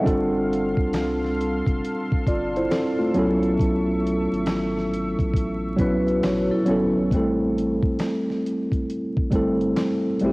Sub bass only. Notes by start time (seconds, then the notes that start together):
0.07 G1
0.78 C2
1.67 F1
2.27 G1
3.16 B1
3.60 B1
4.32 G#1
5.20 A1
5.80 B1
6.25 A1
6.69 G1
6.97 G#1
7.12 A1
9.32 G1
10.22 A1